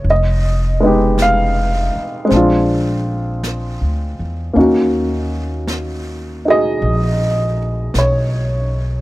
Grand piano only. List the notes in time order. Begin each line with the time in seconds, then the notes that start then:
Already playing: C#5
0.10 D#5
0.80 G#3 B3 D#4
0.86 G4
1.22 F5
2.25 G#3 C4
2.33 D4 F4
4.53 A#3 C#4 D#4
4.58 F#4
6.45 D#4 F#4 G#4
6.50 D#5
7.98 C#5